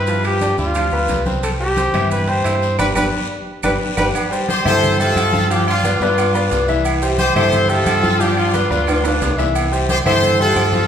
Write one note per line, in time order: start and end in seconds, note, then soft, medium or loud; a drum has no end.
0.00 0.52 G2 medium
0.00 0.23 B4 loud
0.07 0.36 F3 medium
0.07 0.36 F4 medium
0.07 0.36 F5 medium
0.07 high conga soft
0.07 high timbale medium
0.07 long guiro medium
0.07 maracas medium
0.24 0.57 G4 loud
0.24 high conga soft
0.24 high timbale medium
0.24 claves medium
0.24 maracas soft
0.41 0.69 D4 medium
0.41 0.69 D5 medium
0.41 0.70 D6 medium
0.41 high conga medium
0.41 high timbale medium
0.41 low timbale medium
0.41 short guiro medium
0.41 maracas medium
0.57 0.90 D2 medium
0.57 1.22 F4 medium
0.57 high conga soft
0.57 short guiro medium
0.57 maracas soft
0.75 0.89 F3 medium
0.75 0.89 F4 medium
0.75 0.90 F5 medium
0.75 high conga soft
0.75 high timbale medium
0.75 long guiro medium
0.75 claves medium
0.75 maracas medium
0.91 1.08 D2 medium
0.91 1.20 B3 medium
0.91 1.20 B4 medium
0.91 1.21 B5 medium
0.91 high conga soft
0.91 maracas soft
1.08 1.88 C2 medium
1.08 high conga medium
1.08 high timbale medium
1.08 low timbale medium
1.08 short guiro medium
1.08 maracas medium
1.26 1.54 C4 medium
1.26 1.54 C5 medium
1.26 1.54 C6 medium
1.26 high conga medium
1.26 short guiro medium
1.26 maracas soft
1.43 1.51 A4 medium
1.43 high conga soft
1.43 high timbale medium
1.43 long guiro medium
1.43 claves medium
1.43 maracas medium
1.60 1.74 G3 medium
1.60 2.08 G4 loud
1.60 1.74 G4 medium
1.60 1.75 G5 medium
1.60 high conga soft
1.60 maracas soft
1.77 1.91 C4 medium
1.77 1.92 C5 medium
1.77 1.92 C6 medium
1.77 high conga medium
1.77 high timbale medium
1.77 low timbale medium
1.77 short guiro medium
1.77 maracas medium
1.94 2.41 G2 medium
1.94 2.22 E3 medium
1.94 2.22 E4 medium
1.94 2.22 E5 medium
1.94 high conga soft
1.94 low conga medium
1.94 high timbale medium
1.94 short guiro medium
1.94 claves medium
1.94 maracas soft
2.11 2.30 B4 medium
2.11 high conga soft
2.11 low conga medium
2.11 long guiro medium
2.11 maracas medium
2.27 2.42 G3 medium
2.27 2.42 G4 medium
2.27 2.79 C5 medium
2.27 2.42 G5 medium
2.27 high conga soft
2.27 high timbale medium
2.27 maracas soft
2.44 2.77 G2 medium
2.44 2.73 E4 medium
2.44 2.73 E5 medium
2.44 2.73 E6 medium
2.44 high conga soft
2.44 high timbale loud
2.44 low timbale medium
2.44 short guiro medium
2.44 claves medium
2.44 maracas medium
2.62 high conga soft
2.62 short guiro medium
2.62 maracas soft
2.79 2.91 G1 loud
2.79 2.90 G4 medium
2.79 2.90 B4 medium
2.79 2.87 B4 medium
2.79 2.90 D5 medium
2.79 high conga medium
2.79 high timbale loud
2.79 long guiro loud
2.79 claves medium
2.79 maracas loud
2.96 3.08 G1 loud
2.96 3.07 G4 loud
2.96 3.07 B4 medium
2.96 3.04 B4 loud
2.96 3.07 D5 loud
2.96 high conga medium
2.96 high timbale medium
2.96 long guiro medium
2.96 claves loud
2.96 maracas loud
3.63 3.76 G1 medium
3.63 3.75 G4 medium
3.63 3.72 B4 medium
3.63 3.75 B4 loud
3.63 3.75 D5 medium
3.63 high conga loud
3.63 high timbale loud
3.63 long guiro medium
3.63 claves loud
3.63 maracas loud
3.97 4.10 G1 medium
3.97 4.08 G4 medium
3.97 4.06 B4 medium
3.97 4.08 B4 medium
3.97 4.08 D5 medium
3.97 high conga loud
3.97 high timbale loud
3.97 claves medium
3.97 maracas loud
4.15 high conga soft
4.15 low agogo loud
4.15 long guiro medium
4.15 claves medium
4.15 maracas medium
4.31 4.59 G3 medium
4.31 4.59 G4 medium
4.31 4.60 C5 medium
4.31 high conga soft
4.31 maracas medium
4.49 4.65 G4 medium
4.49 4.65 C5 loud
4.49 high conga loud
4.49 low agogo medium
4.49 short guiro medium
4.49 maracas medium
4.65 5.13 G2 loud
4.65 4.93 E3 medium
4.65 4.93 E4 medium
4.65 4.98 A4 medium
4.65 4.97 C5 loud
4.65 4.93 E5 medium
4.65 high conga soft
4.65 low conga medium
4.65 low agogo loud
4.65 short guiro medium
4.65 claves medium
4.65 maracas soft
4.82 high conga soft
4.82 low conga medium
4.82 low agogo medium
4.82 long guiro medium
4.82 maracas medium
4.99 5.27 G3 medium
4.99 5.47 F4 medium
4.99 5.27 G4 medium
4.99 5.47 A4 loud
4.99 5.27 C5 medium
4.99 high conga soft
4.99 maracas medium
5.16 5.95 G2 medium
5.16 high conga medium
5.16 low agogo loud
5.16 short guiro medium
5.16 claves medium
5.16 maracas medium
5.33 5.47 F3 medium
5.33 5.47 F4 medium
5.33 5.47 F5 medium
5.33 high conga medium
5.33 short guiro medium
5.33 maracas soft
5.50 5.78 F3 medium
5.50 5.67 D4 medium
5.50 5.78 F4 medium
5.50 5.67 G4 loud
5.50 5.78 F5 medium
5.50 high conga soft
5.50 low agogo medium
5.50 long guiro medium
5.50 maracas medium
5.67 5.99 D4 medium
5.67 5.99 F4 loud
5.67 high conga soft
5.67 low agogo loud
5.67 claves medium
5.84 5.98 B3 medium
5.84 5.98 B4 medium
5.84 5.98 D5 medium
5.84 high conga medium
5.84 low agogo medium
5.84 short guiro medium
5.84 maracas medium
6.00 6.48 G2 loud
6.00 6.29 B3 medium
6.00 6.65 D4 medium
6.00 6.65 F4 medium
6.00 6.29 B4 medium
6.00 6.29 D5 medium
6.00 high conga soft
6.00 short guiro medium
6.00 maracas soft
6.17 high conga soft
6.17 low agogo loud
6.17 long guiro medium
6.17 claves medium
6.17 maracas medium
6.34 6.62 B3 medium
6.34 6.63 B4 medium
6.34 6.63 D5 medium
6.34 high conga soft
6.34 maracas medium
6.51 7.30 C2 medium
6.51 high conga soft
6.51 low timbale medium
6.51 low agogo medium
6.51 short guiro medium
6.51 maracas medium
6.68 6.96 E3 medium
6.68 6.96 E4 medium
6.68 6.96 E5 medium
6.68 high conga soft
6.68 short guiro medium
6.68 maracas soft
6.85 high conga soft
6.85 low agogo loud
6.85 long guiro medium
6.85 claves medium
6.85 maracas medium
7.02 7.30 G3 medium
7.02 7.30 G4 medium
7.02 7.30 C5 medium
7.02 high conga soft
7.02 maracas medium
7.18 7.35 G4 medium
7.18 7.34 C5 loud
7.18 high conga loud
7.18 low agogo medium
7.18 short guiro medium
7.18 maracas medium
7.35 7.83 G2 loud
7.35 7.63 E3 medium
7.35 7.64 E4 medium
7.35 7.68 A4 medium
7.35 7.67 C5 loud
7.35 7.64 E5 medium
7.35 high conga soft
7.35 low conga medium
7.35 low agogo loud
7.35 short guiro medium
7.35 claves medium
7.35 maracas soft
7.52 high conga soft
7.52 low conga medium
7.52 low agogo medium
7.52 long guiro medium
7.52 maracas medium
7.69 7.97 G3 medium
7.69 8.21 F4 medium
7.69 7.97 G4 medium
7.69 8.20 A4 loud
7.69 7.98 C5 medium
7.69 high conga soft
7.69 maracas medium
7.86 8.65 G2 medium
7.86 high conga medium
7.86 low agogo loud
7.86 short guiro medium
7.86 claves medium
7.86 maracas medium
8.03 8.17 F3 medium
8.03 8.17 F4 medium
8.03 8.18 F5 medium
8.03 high conga medium
8.03 short guiro medium
8.03 maracas soft
8.19 8.48 F3 medium
8.19 8.38 D4 medium
8.19 8.48 F4 medium
8.19 8.37 G4 loud
8.19 8.48 F5 medium
8.19 high conga soft
8.19 low agogo medium
8.19 long guiro medium
8.19 maracas medium
8.37 8.70 D4 medium
8.37 8.69 F4 loud
8.37 high conga soft
8.37 low agogo loud
8.37 claves medium
8.54 8.68 B3 medium
8.54 8.68 B4 medium
8.54 8.68 D5 medium
8.54 high conga medium
8.54 low agogo medium
8.54 short guiro medium
8.54 maracas medium
8.70 9.18 D2 loud
8.70 8.98 B3 medium
8.70 9.35 D4 medium
8.70 9.34 F4 medium
8.70 8.98 B4 medium
8.70 8.99 D5 medium
8.70 high conga soft
8.70 short guiro medium
8.70 maracas soft
8.87 high conga soft
8.87 high timbale loud
8.87 low agogo loud
8.87 long guiro medium
8.87 claves medium
8.87 maracas medium
9.04 9.32 B3 medium
9.04 9.32 B4 medium
9.04 9.32 D5 medium
9.04 high conga soft
9.04 high timbale medium
9.04 maracas medium
9.21 10.00 C2 medium
9.21 high conga soft
9.21 low timbale loud
9.21 low agogo medium
9.21 short guiro medium
9.21 maracas medium
9.38 9.66 E3 medium
9.38 9.66 E4 medium
9.38 9.66 E5 medium
9.38 high conga soft
9.38 low timbale medium
9.38 short guiro medium
9.38 maracas soft
9.55 high conga soft
9.55 low agogo loud
9.55 long guiro medium
9.55 claves medium
9.55 maracas medium
9.72 10.00 G3 medium
9.72 10.00 G4 medium
9.72 10.00 C5 medium
9.72 high conga soft
9.72 maracas medium
9.89 9.98 G4 medium
9.89 9.97 C5 loud
9.89 high conga medium
9.89 low agogo medium
9.89 short guiro medium
9.89 maracas medium
10.06 10.53 G2 loud
10.06 10.33 E3 medium
10.06 10.34 E4 medium
10.06 10.38 A4 medium
10.06 10.37 C5 loud
10.06 10.34 E5 loud
10.06 high conga soft
10.06 low conga medium
10.06 low agogo loud
10.06 short guiro medium
10.06 claves medium
10.06 maracas soft
10.22 high conga soft
10.22 low conga medium
10.22 low agogo medium
10.22 long guiro medium
10.22 maracas medium
10.39 10.67 G3 medium
10.39 10.87 F4 medium
10.39 10.68 G4 medium
10.39 10.87 A4 loud
10.39 10.68 C5 medium
10.39 high conga soft
10.56 10.87 G2 medium
10.56 high conga medium
10.56 low timbale medium
10.56 low agogo loud
10.56 short guiro medium
10.56 claves medium
10.56 maracas medium
10.72 10.87 F3 medium
10.72 10.87 F4 medium
10.72 10.87 F5 medium
10.72 high conga medium
10.72 short guiro medium
10.72 maracas soft